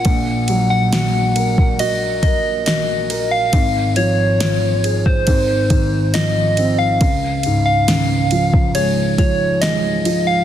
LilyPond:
<<
  \new Staff \with { instrumentName = "Soft synth lead" } { \time 4/4 \key des \major \tempo 4 = 69 ges''8. ges''4~ ges''16 ees''8 ees''8 ees''8. f''16~ | f''8 des''4~ des''16 c''4~ c''16 ees''8. f''16~ | f''8. f''4~ f''16 des''8 des''8 ees''8. f''16 | }
  \new Staff \with { instrumentName = "Felt piano" } { \clef bass \time 4/4 \key des \major <bes,, bes,>8 ges8 ges'8 bes'8 ges'8 bes'8 ges'8 bes'8 | <aes,, aes,>8 f8 f'8 aes'8 <aes,, aes,>8 ees8 f8 c'8 | des,8 aes,8 des8 f8 aes8 f8 aes8 f8 | }
  \new DrumStaff \with { instrumentName = "Drums" } \drummode { \time 4/4 <bd cymr>8 cymr8 <cymr sn>8 cymr16 bd16 cymr8 <bd cymr>8 <cymr sn>8 cymr8 | <bd cymr>8 cymr8 <cymr sn>8 cymr16 bd16 <bd cymr>8 <bd cymr>8 <cymr sn>8 cymr8 | <bd cymr>8 cymr8 <cymr sn>8 cymr16 bd16 cymr8 <bd cymr>8 <cymr sn>8 cymr8 | }
>>